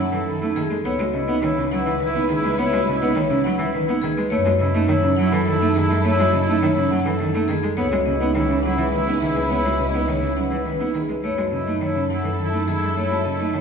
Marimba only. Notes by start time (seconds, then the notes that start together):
0.13 A4
0.42 D#4
0.70 A4
1.00 F#4
1.28 D#4
1.57 C#4
1.86 B4
2.14 D#4
2.44 B4
2.72 F#4
3.01 D#4
3.30 C#4
3.59 B4
3.88 D#4
4.17 B4
4.46 F#4
4.74 D#4
5.03 C#4
5.32 A4
5.61 D#4
5.90 A4
6.19 F#4
6.48 D#4
6.76 C#4
7.05 A4
7.34 D#4
7.63 A4
7.92 F#4
8.21 D#4
8.49 C#4
8.78 B4
9.07 D#4
9.36 B4
9.65 F#4
9.94 D#4
10.22 C#4
10.51 B4
10.80 D#4
11.09 B4
11.38 F#4
11.67 D#4
11.96 C#4
12.24 A4
12.53 D#4
12.82 A4
13.11 F#4
13.40 D#4